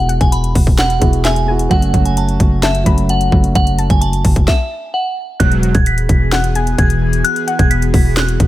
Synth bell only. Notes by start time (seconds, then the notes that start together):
Already playing: F#5
0.21 G#5
0.32 B5
0.79 F#5
1.24 G#5
1.71 F#5
2.06 G#5
2.18 A5
2.63 E5
3.10 F#5
3.56 F#5
3.90 G#5
4.01 A5
4.48 E5
4.94 F#5
5.40 F#6
5.75 G#6
5.87 B6
6.32 F#6
6.79 G#6
7.24 F#6
7.59 G#6
7.71 B6
8.17 F#6